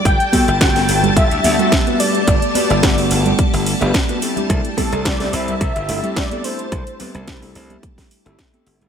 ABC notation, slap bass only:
X:1
M:4/4
L:1/16
Q:"Swing 16ths" 1/4=108
K:Clyd
V:1 name="Slap bass" clef=bass
G,,, z2 G,,,3 G,,, z G,,, D,, D,, z4 z | G,,, z2 G,,,3 G,,, z2 G,,, z G,,, z4 | C,, z2 C,,3 C,, z C,, G,,, G,,, z4 z | C,, z2 C,,3 C,, z4 G,,, z2 G,,, G,,, |]